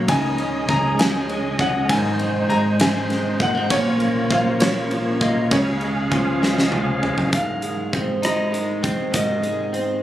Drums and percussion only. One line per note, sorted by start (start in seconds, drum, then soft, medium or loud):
0.08 kick medium
0.08 ride medium
0.38 ride soft
0.69 kick medium
0.69 ride soft
0.99 snare loud
0.99 ride medium
1.29 ride soft
1.59 kick medium
1.59 ride soft
1.89 kick loud
1.89 ride medium
2.19 ride soft
2.50 ride soft
2.80 snare loud
2.80 ride medium
3.10 snare soft
3.10 ride soft
3.40 kick medium
3.40 ride soft
3.70 kick loud
3.70 ride medium
4.00 ride soft
4.31 kick medium
4.31 ride soft
4.60 snare loud
4.60 ride medium
4.91 ride soft
5.21 kick medium
5.21 ride soft
5.51 kick loud
5.51 ride medium
5.81 ride soft
6.12 kick medium
6.12 ride soft
6.43 snare medium
6.58 snare medium
6.72 high tom medium
7.03 mid tom loud
7.18 floor tom medium
7.33 kick medium
7.33 closed hi-hat medium
7.62 closed hi-hat soft
7.93 kick medium
7.93 closed hi-hat soft
8.23 cross-stick medium
8.23 closed hi-hat medium
8.54 closed hi-hat soft
8.84 kick medium
8.84 closed hi-hat soft
9.14 kick medium
9.14 closed hi-hat medium
9.43 closed hi-hat soft
9.74 closed hi-hat soft